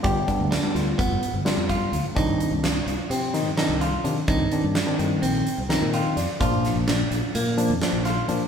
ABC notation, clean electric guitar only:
X:1
M:9/8
L:1/8
Q:3/8=85
K:Cm
V:1 name="Clean electric guitar"
G2 D2 =B,2 D F2 | E2 D2 C2 E F2 | E2 D2 C2 E F2 | F2 D2 B,2 D F2 |]